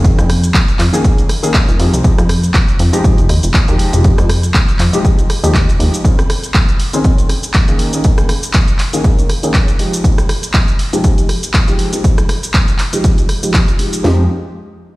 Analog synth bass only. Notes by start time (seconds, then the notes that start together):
Already playing: F1
0.18 F2
0.79 F2
1.69 F1
1.80 F2
1.93 C2
2.18 F2
2.80 F2
3.05 G#2
3.19 F1
3.30 D#2
3.44 F1
3.69 D#2
3.80 F1
3.93 F1
4.18 F2
4.80 F2
5.44 D#2
5.68 F1
5.80 D#2
14.05 F2